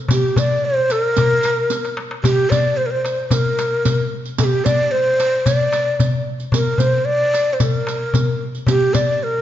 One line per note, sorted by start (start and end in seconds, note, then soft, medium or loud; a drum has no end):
0.09 0.39 G4 medium
0.09 riq medium
0.09 darbuka dum loud
0.36 0.67 D5 loud
0.36 riq medium
0.36 darbuka dum medium
0.64 0.93 C5 medium
0.64 darbuka ka soft
0.90 1.98 A#4 loud
0.90 riq soft
0.90 darbuka tek medium
1.16 riq medium
1.16 darbuka dum loud
1.43 riq soft
1.43 darbuka tek medium
1.70 riq medium
1.70 darbuka tek medium
1.85 riq soft
1.85 darbuka ka medium
1.97 darbuka tek medium
2.11 darbuka ka medium
2.24 2.52 G4 medium
2.24 riq medium
2.24 darbuka dum loud
2.50 2.78 D5 medium
2.50 riq medium
2.50 darbuka dum loud
2.77 2.88 C5 medium
2.86 2.92 A#4 medium
2.91 3.29 C5 medium
3.05 riq soft
3.05 darbuka tek medium
3.29 4.10 A#4 medium
3.29 3.34 C5 medium
3.29 riq medium
3.29 darbuka dum medium
3.59 riq soft
3.59 darbuka tek medium
3.85 riq medium
3.85 darbuka dum medium
3.99 darbuka ka soft
4.25 riq soft
4.38 4.45 A4 medium
4.38 riq medium
4.38 darbuka dum medium
4.44 4.66 G4 medium
4.65 4.93 D5 loud
4.65 riq medium
4.65 darbuka dum medium
4.91 5.48 C5 medium
5.20 riq soft
5.20 darbuka tek medium
5.46 6.26 D5 medium
5.46 riq medium
5.46 darbuka dum medium
5.73 riq soft
5.73 darbuka tek medium
6.00 riq medium
6.00 darbuka dum medium
6.13 darbuka ka soft
6.40 riq soft
6.52 6.80 A#4 medium
6.52 riq medium
6.52 darbuka dum medium
6.78 7.07 C5 medium
6.78 riq medium
6.78 darbuka dum medium
7.05 7.55 D5 loud
7.33 riq soft
7.33 darbuka tek medium
7.53 7.63 C5 medium
7.60 8.41 A#4 medium
7.60 riq medium
7.60 darbuka dum medium
7.87 riq soft
7.87 darbuka tek medium
8.14 riq medium
8.14 darbuka dum medium
8.27 darbuka ka soft
8.55 riq soft
8.67 8.96 G4 medium
8.67 riq medium
8.67 darbuka dum medium
8.94 9.25 D5 medium
8.94 riq medium
8.94 darbuka dum medium
9.23 9.42 A#4 medium